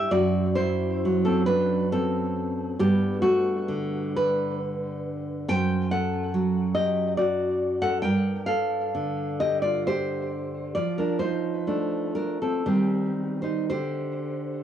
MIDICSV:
0, 0, Header, 1, 2, 480
1, 0, Start_track
1, 0, Key_signature, 1, "major"
1, 0, Tempo, 903614
1, 52, Time_signature, 3, 2, 24, 8
1, 2451, Tempo, 862069
1, 2941, Key_signature, -2, "minor"
1, 4371, Tempo, 903614
1, 6291, Tempo, 985222
1, 6771, Tempo, 1088929
1, 7640, End_track
2, 0, Start_track
2, 0, Title_t, "Nylon-string guitar"
2, 0, Program_c, 0, 24
2, 0, Note_on_c, 0, 55, 59
2, 0, Note_on_c, 0, 76, 107
2, 54, Note_off_c, 0, 55, 0
2, 58, Note_on_c, 0, 42, 81
2, 59, Note_off_c, 0, 76, 0
2, 59, Note_on_c, 0, 74, 102
2, 64, Note_on_c, 0, 66, 80
2, 284, Note_off_c, 0, 66, 0
2, 288, Note_off_c, 0, 74, 0
2, 294, Note_on_c, 0, 72, 103
2, 300, Note_on_c, 0, 64, 77
2, 558, Note_on_c, 0, 54, 65
2, 640, Note_off_c, 0, 64, 0
2, 644, Note_off_c, 0, 72, 0
2, 663, Note_on_c, 0, 69, 91
2, 672, Note_on_c, 0, 60, 68
2, 774, Note_off_c, 0, 69, 0
2, 776, Note_on_c, 0, 71, 96
2, 777, Note_off_c, 0, 60, 0
2, 781, Note_on_c, 0, 62, 75
2, 999, Note_off_c, 0, 62, 0
2, 1003, Note_off_c, 0, 71, 0
2, 1021, Note_on_c, 0, 69, 98
2, 1027, Note_on_c, 0, 60, 76
2, 1461, Note_off_c, 0, 42, 0
2, 1463, Note_off_c, 0, 69, 0
2, 1464, Note_off_c, 0, 60, 0
2, 1484, Note_on_c, 0, 43, 91
2, 1487, Note_on_c, 0, 67, 110
2, 1488, Note_off_c, 0, 54, 0
2, 1492, Note_on_c, 0, 59, 79
2, 1707, Note_off_c, 0, 67, 0
2, 1709, Note_off_c, 0, 59, 0
2, 1709, Note_on_c, 0, 66, 102
2, 1712, Note_on_c, 0, 57, 78
2, 1956, Note_on_c, 0, 50, 70
2, 2186, Note_off_c, 0, 57, 0
2, 2186, Note_off_c, 0, 66, 0
2, 2213, Note_on_c, 0, 71, 94
2, 2216, Note_on_c, 0, 62, 68
2, 2437, Note_off_c, 0, 62, 0
2, 2443, Note_off_c, 0, 71, 0
2, 2922, Note_off_c, 0, 43, 0
2, 2936, Note_on_c, 0, 42, 85
2, 2938, Note_off_c, 0, 50, 0
2, 2938, Note_on_c, 0, 79, 124
2, 2949, Note_on_c, 0, 72, 92
2, 3169, Note_off_c, 0, 72, 0
2, 3170, Note_off_c, 0, 79, 0
2, 3174, Note_on_c, 0, 78, 93
2, 3181, Note_on_c, 0, 69, 66
2, 3412, Note_on_c, 0, 54, 65
2, 3629, Note_off_c, 0, 69, 0
2, 3629, Note_off_c, 0, 78, 0
2, 3638, Note_on_c, 0, 75, 94
2, 3648, Note_on_c, 0, 67, 71
2, 3870, Note_off_c, 0, 67, 0
2, 3872, Note_off_c, 0, 75, 0
2, 3875, Note_on_c, 0, 74, 80
2, 3882, Note_on_c, 0, 66, 66
2, 4224, Note_off_c, 0, 66, 0
2, 4228, Note_off_c, 0, 74, 0
2, 4233, Note_on_c, 0, 69, 77
2, 4234, Note_on_c, 0, 78, 101
2, 4344, Note_off_c, 0, 78, 0
2, 4346, Note_off_c, 0, 42, 0
2, 4347, Note_on_c, 0, 79, 102
2, 4353, Note_on_c, 0, 43, 72
2, 4354, Note_off_c, 0, 69, 0
2, 4359, Note_on_c, 0, 70, 81
2, 4368, Note_off_c, 0, 54, 0
2, 4581, Note_off_c, 0, 79, 0
2, 4583, Note_on_c, 0, 77, 94
2, 4585, Note_off_c, 0, 70, 0
2, 4592, Note_on_c, 0, 69, 70
2, 4840, Note_on_c, 0, 50, 57
2, 5059, Note_off_c, 0, 77, 0
2, 5062, Note_off_c, 0, 69, 0
2, 5082, Note_on_c, 0, 75, 94
2, 5088, Note_on_c, 0, 67, 70
2, 5195, Note_off_c, 0, 75, 0
2, 5197, Note_on_c, 0, 74, 85
2, 5202, Note_off_c, 0, 67, 0
2, 5207, Note_on_c, 0, 65, 69
2, 5322, Note_off_c, 0, 65, 0
2, 5325, Note_off_c, 0, 74, 0
2, 5330, Note_on_c, 0, 72, 95
2, 5335, Note_on_c, 0, 67, 68
2, 5782, Note_off_c, 0, 43, 0
2, 5791, Note_off_c, 0, 67, 0
2, 5791, Note_off_c, 0, 72, 0
2, 5798, Note_on_c, 0, 74, 88
2, 5803, Note_on_c, 0, 53, 68
2, 5808, Note_off_c, 0, 50, 0
2, 5810, Note_on_c, 0, 65, 60
2, 5920, Note_off_c, 0, 65, 0
2, 5921, Note_on_c, 0, 70, 82
2, 5922, Note_off_c, 0, 74, 0
2, 5929, Note_on_c, 0, 62, 61
2, 6033, Note_on_c, 0, 72, 80
2, 6039, Note_off_c, 0, 62, 0
2, 6043, Note_off_c, 0, 70, 0
2, 6047, Note_on_c, 0, 63, 57
2, 6288, Note_on_c, 0, 57, 51
2, 6290, Note_on_c, 0, 62, 50
2, 6501, Note_off_c, 0, 72, 0
2, 6506, Note_off_c, 0, 63, 0
2, 6521, Note_on_c, 0, 70, 71
2, 6523, Note_off_c, 0, 62, 0
2, 6529, Note_on_c, 0, 62, 51
2, 6640, Note_off_c, 0, 62, 0
2, 6645, Note_off_c, 0, 70, 0
2, 6651, Note_on_c, 0, 69, 66
2, 6654, Note_on_c, 0, 60, 53
2, 6747, Note_off_c, 0, 53, 0
2, 6750, Note_off_c, 0, 57, 0
2, 6766, Note_off_c, 0, 60, 0
2, 6769, Note_on_c, 0, 51, 61
2, 6769, Note_on_c, 0, 67, 70
2, 6770, Note_on_c, 0, 55, 45
2, 6772, Note_off_c, 0, 69, 0
2, 6773, Note_on_c, 0, 60, 50
2, 7100, Note_off_c, 0, 60, 0
2, 7102, Note_off_c, 0, 67, 0
2, 7105, Note_on_c, 0, 72, 66
2, 7112, Note_on_c, 0, 63, 51
2, 7222, Note_off_c, 0, 55, 0
2, 7222, Note_off_c, 0, 72, 0
2, 7225, Note_off_c, 0, 51, 0
2, 7227, Note_on_c, 0, 72, 82
2, 7228, Note_off_c, 0, 63, 0
2, 7231, Note_on_c, 0, 67, 61
2, 7233, Note_on_c, 0, 50, 56
2, 7640, Note_off_c, 0, 50, 0
2, 7640, Note_off_c, 0, 67, 0
2, 7640, Note_off_c, 0, 72, 0
2, 7640, End_track
0, 0, End_of_file